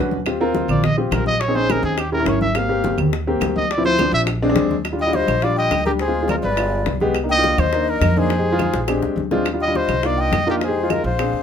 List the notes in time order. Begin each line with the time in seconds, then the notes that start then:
Already playing: D#2 C#4 D4 F#4 B4
0.11 high bongo, high conga
0.26 C4 F4 G4, high bongo, high conga, claves
0.40 C4 F4 A#4, high conga
0.55 high bongo, high conga
0.68 A#1 D5, high conga, low conga, claves
0.84 D#5, high bongo, high conga, low conga
0.97 C4 F4 G4, high conga
1.11 A#1 A#4, high bongo, low bongo, high conga, claves
1.26 D#5, high conga
1.41 C#5, high bongo, high conga
1.48 C4 C#4 D#4 G#4
1.55 C4 C#4 D#4 G#4 C5, high bongo, high conga
1.69 C4 C#4 D#4 G#4 A#4, high bongo, high conga, claves
1.83 D#2 G#4, high bongo, high conga
1.98 G4, high bongo, high conga, claves
2.12 C#4 E4 G4 A#4, high conga
2.20 C#4 E4 A#4
2.25 G#1 C#5, high bongo, low bongo, high conga
2.41 E5, high bongo, high conga
2.55 A#3 C4 G4 F5, high bongo, claves
2.69 A#3 C4 G4, high conga
2.84 high bongo, high conga
2.98 D#2, high conga, low conga, claves
3.13 high bongo
3.27 A#3 C4 G4, high conga
3.41 D2, high bongo, low bongo, high conga, claves
3.56 D#5, high conga
3.71 D5, high bongo, high conga
3.78 F3 C4 E4
3.85 F3 C4 E4 C5, high bongo, high conga
3.99 F3 C4 D4, high bongo, high conga, claves
4.12 A#1 E5, high bongo, high conga
4.27 high bongo, high conga, claves
4.42 G#3 C4 D4, high conga
4.49 G#3 C4 D4
4.55 D#2, high bongo, low bongo, high conga
4.71 high bongo, high conga
4.85 high bongo, high conga, claves
4.92 G3 D4 F4
4.99 D#5 G5, high bongo, high conga
5.07 G3 D4 F4
5.13 C5 D#5, high bongo, high conga
5.27 A#1, high bongo, high conga, claves
5.42 G3 D4 F4 D5 F5, high bongo, high conga
5.56 D#5 G5, high conga
5.71 D2, high bongo, low bongo, high conga, claves
5.85 G3 D4 G4 A#4, high bongo, high conga
5.99 G#4 C5, high bongo
6.08 G#3 C4 F4
6.15 high conga
6.22 G#3 C4 F4
6.28 A#4 D5, high bongo, high conga, claves
6.42 G1 B4 D5, high bongo, high conga
6.57 G#3 B3 F4, high bongo, high conga, claves
6.72 high bongo, high conga
6.86 C2, high bongo, low bongo, high conga
7.00 G#3 B3 G4, high bongo, high conga
7.15 high bongo, claves
7.23 A#3 D4 D#4
7.29 D#5 G5, high bongo, high conga
7.37 A#3 D4 F4
7.44 high bongo, high conga
7.58 D#2 C5 D#5, high bongo, high conga, claves
7.73 A#3 D4 D#4, high bongo, high conga
7.87 A#4 D#5, high conga
8.01 F2, high bongo, low bongo, high conga, claves
8.16 A#3 D4 D#4 G#4 C5, high bongo, high conga
8.30 high bongo
8.38 G#3 D#4 G4
8.46 high conga
8.53 G#3 D#4 F4
8.59 high bongo, high conga, claves
8.74 A#1, high bongo, high conga
8.88 G#3 C4 D4 G4, high bongo, high conga, claves
9.02 D2, low bongo, high conga
9.16 D#2, high conga
9.31 G#3 C4 D4 F4, low bongo, high conga
9.46 high bongo, high conga, claves
9.53 G3 D4 F4
9.60 D#5 G5, high bongo, high conga
9.68 G3 D4 F4
9.75 C5 D#5, high bongo, high conga
9.88 C2, high bongo, high conga, claves
10.03 A#3 D4 D#4 F4 D5 F5, high bongo, high conga
10.18 D#5 G5, high conga
10.32 F2, high bongo, low bongo, high conga, claves
10.47 A#3 D4 D#4 F4 G4 A#4, high bongo
10.61 G#4 C5, high bongo, high conga
10.69 G#3 D#4 G4
10.76 high conga
10.83 G#3 D#4 F4
10.90 A#4 D#5, high bongo, high conga, claves
11.04 A#1 C5 F5, high bongo, high conga
11.19 C4 D4 G#4, high bongo, high conga, claves
11.32 D2, high bongo, high conga